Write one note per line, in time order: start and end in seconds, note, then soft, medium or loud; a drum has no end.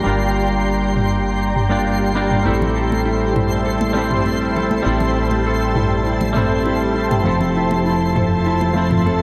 0.00 1.51 G3 medium
0.00 7.21 G4 medium
0.00 2.41 D5 medium
0.00 2.42 G5 medium
0.00 2.41 A#5 medium
0.00 9.22 C6 medium
0.00 9.22 C7 medium
0.05 2.43 G1 medium
0.05 1.52 A#3 medium
0.05 1.52 D4 medium
0.05 1.53 F4 medium
0.05 1.54 A#4 medium
0.96 mid tom medium
1.56 mid tom medium
1.69 2.11 G3 medium
1.69 2.12 A#3 medium
1.69 2.12 D4 medium
1.69 2.13 F4 medium
1.69 2.13 D5 medium
2.14 2.42 G3 medium
2.14 2.42 A#3 medium
2.14 2.42 D4 medium
2.14 2.42 F4 medium
2.14 2.43 D5 medium
2.31 mid tom medium
2.43 4.83 A1 medium
2.43 3.91 G3 medium
2.43 3.92 A3 medium
2.43 3.92 C4 medium
2.43 3.05 E4 medium
2.43 3.93 E4 medium
2.43 9.22 C5 medium
2.43 7.22 E5 medium
2.43 9.22 A5 medium
2.48 3.93 A4 medium
2.62 low conga medium
2.76 3.65 A4 medium
2.92 high conga medium
3.05 3.35 E4 medium
3.35 3.95 E4 medium
3.35 mid tom medium
3.35 high conga medium
3.66 4.56 A4 medium
3.81 high conga medium
3.93 4.81 G3 medium
3.93 4.81 A3 medium
3.93 4.82 C4 medium
3.93 4.25 E4 medium
3.97 4.83 E4 medium
3.97 4.84 C5 medium
4.11 mid tom medium
4.11 low conga medium
4.26 4.86 E4 medium
4.26 high conga medium
4.56 5.46 A4 medium
4.56 low conga medium
4.71 high conga medium
4.83 7.23 A1 medium
4.83 6.31 G3 medium
4.83 6.31 A3 medium
4.83 6.32 C4 medium
4.83 5.16 E4 loud
4.87 6.33 E4 medium
4.87 6.33 A4 medium
5.00 low conga medium
5.16 5.76 E4 medium
5.16 shaker medium
5.31 high conga medium
5.46 6.36 A4 medium
5.76 6.06 E4 medium
5.76 mid tom medium
6.06 6.65 E4 medium
6.21 high conga medium
6.21 low conga medium
6.33 7.21 G3 medium
6.33 7.21 A3 medium
6.33 7.22 C4 medium
6.33 7.23 E4 medium
6.33 7.26 A4 medium
6.33 mid tom medium
6.38 7.23 C5 medium
6.66 6.96 E4 medium
6.66 high conga medium
6.96 7.55 E4 medium
6.96 shaker medium
7.11 mid tom medium
7.11 high conga medium
7.24 9.22 F1 medium
7.24 8.71 F3 medium
7.24 9.22 F3 medium
7.24 8.72 A3 medium
7.24 8.72 C4 medium
7.24 8.73 E4 medium
7.24 8.15 A4 medium
7.24 9.22 E5 medium
7.29 8.74 A4 medium
7.41 low conga medium
7.56 7.85 E4 medium
7.56 shaker medium
7.71 high conga medium
7.86 8.45 E4 medium
8.02 shaker soft
8.16 9.06 A4 medium
8.16 mid tom medium
8.16 high conga medium
8.16 shaker medium
8.46 8.76 E4 medium
8.61 high conga medium
8.73 9.22 F3 medium
8.73 9.22 A3 medium
8.73 9.22 C4 medium
8.73 9.22 E4 medium
8.73 shaker medium
8.78 9.22 E4 medium
8.78 9.22 C5 medium
8.91 mid tom medium
8.91 low conga medium
9.06 9.22 A4 medium
9.06 high conga medium